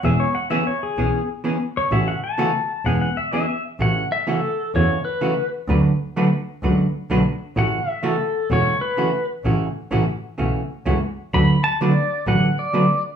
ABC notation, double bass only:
X:1
M:4/4
L:1/8
Q:"Swing" 1/4=128
K:A
V:1 name="Double bass" clef=bass
E,,,4 B,,,4 | A,,,4 E,,,4 | A,,,4 E,,4 | D,,4 C,,2 B,,,2 |
A,,,4 E,,,4 | A,,,2 A,,,2 B,,,2 C,,2 | D,,4 A,,,4 |]